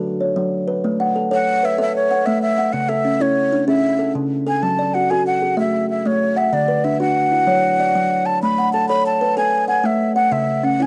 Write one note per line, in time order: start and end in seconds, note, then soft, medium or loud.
0.00 0.21 F#3 medium
0.00 0.36 A4 medium
0.20 0.68 C#5 medium
0.36 0.68 F#3 medium
0.68 0.99 B4 medium
0.84 1.16 A3 medium
1.00 1.47 F#5 medium
1.16 1.30 A4 medium
1.31 1.63 A4 medium
1.31 1.79 C#5 medium
1.31 1.67 F#5 loud
1.63 2.10 B4 medium
1.63 1.80 E5 medium
1.78 2.10 A4 medium
1.78 2.26 E5 medium
1.78 1.95 E5 medium
1.96 2.27 C#5 loud
2.11 2.57 F#5 medium
2.26 2.58 A3 medium
2.26 2.41 E5 loud
2.42 2.74 E5 loud
2.58 2.89 F#5 medium
2.73 3.05 C#3 medium
2.73 2.90 F#5 medium
2.89 3.37 A4 medium
2.89 3.23 E5 medium
3.05 3.19 C#4 medium
3.20 3.52 C#4 medium
3.20 3.68 E4 medium
3.20 3.67 C#5 medium
3.53 4.00 D4 medium
3.68 4.00 C#4 medium
3.68 4.15 G#4 medium
3.68 4.12 E5 medium
3.99 4.45 A4 medium
4.15 4.47 C#3 medium
4.47 4.78 A4 medium
4.47 4.64 G#5 medium
4.63 4.95 F#3 medium
4.63 4.96 A5 medium
4.79 5.26 D5 medium
4.94 5.10 F#4 medium
4.94 5.12 F#5 medium
5.10 5.42 F#4 medium
5.10 5.58 A4 medium
5.10 5.26 G#5 medium
5.27 5.56 F#5 medium
5.42 5.74 G#4 medium
5.57 5.89 A3 medium
5.57 6.05 E5 medium
5.57 5.88 E5 medium
5.90 6.08 E5 medium
6.06 6.37 A3 medium
6.06 6.39 C#5 medium
6.36 6.55 E5 medium
6.36 6.68 F#5 medium
6.53 6.84 D3 medium
6.53 6.86 D5 medium
6.68 7.16 B4 medium
6.84 6.99 D4 medium
6.84 7.00 E5 medium
7.00 7.32 D4 medium
7.00 7.47 F#4 medium
7.00 8.27 F#5 loud
7.32 7.63 E4 medium
7.47 7.79 F#3 medium
7.47 7.95 C#5 medium
7.80 8.27 D5 medium
7.95 8.27 F#3 medium
8.26 8.42 A5 loud
8.42 8.74 A3 medium
8.42 8.72 B5 medium
8.58 9.06 F#5 medium
8.73 8.88 A4 medium
8.73 8.88 A5 loud
8.89 9.21 A4 medium
8.89 9.37 C#5 medium
8.89 9.04 B5 loud
9.06 9.35 A5 medium
9.21 9.69 B4 medium
9.37 9.69 A4 medium
9.37 9.67 G#5 loud
9.68 10.15 F#5 medium
9.68 9.87 G#5 medium
9.84 10.16 A3 medium
9.84 10.15 E5 medium
10.16 10.34 F#5 loud
10.16 10.48 F#5 medium
10.32 10.64 C#3 medium
10.32 10.66 E5 medium
10.63 10.79 C#4 medium
10.63 10.84 F#5 medium
10.80 10.87 C#4 medium
10.80 10.87 E4 medium
10.80 10.87 G#5 loud